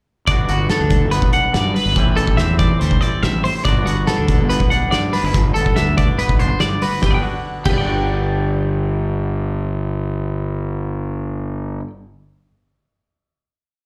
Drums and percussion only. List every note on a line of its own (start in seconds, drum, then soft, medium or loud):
0.27 kick loud
0.27 closed hi-hat medium
0.49 closed hi-hat medium
0.70 snare loud
0.70 closed hi-hat medium
0.90 kick medium
0.90 closed hi-hat medium
1.12 closed hi-hat medium
1.22 kick medium
1.33 closed hi-hat medium
1.54 snare loud
1.54 closed hi-hat medium
1.76 open hi-hat medium
1.96 kick loud
1.96 closed hi-hat medium
2.17 closed hi-hat medium
2.27 kick medium
2.38 snare medium
2.38 closed hi-hat medium
2.59 kick medium
2.59 closed hi-hat medium
2.81 closed hi-hat medium
2.91 kick medium
3.02 closed hi-hat medium
3.23 snare medium
3.23 closed hi-hat medium
3.45 open hi-hat medium
3.65 kick loud
3.65 closed hi-hat medium
3.87 closed hi-hat medium
4.08 snare loud
4.08 closed hi-hat medium
4.28 kick medium
4.28 closed hi-hat medium
4.50 closed hi-hat medium
4.60 kick medium
4.71 closed hi-hat medium
4.92 snare medium
4.92 closed hi-hat medium
5.13 snare soft
5.13 open hi-hat medium
5.34 kick loud
5.34 closed hi-hat medium
5.56 closed hi-hat medium
5.66 kick medium
5.76 snare loud
5.76 closed hi-hat medium
5.98 kick medium
5.98 closed hi-hat medium
6.19 closed hi-hat medium
6.29 kick medium
6.40 closed hi-hat medium
6.60 snare medium
6.60 closed hi-hat medium
6.82 snare soft
6.82 open hi-hat medium
7.02 kick loud
7.02 snare medium
7.65 kick loud
7.65 crash medium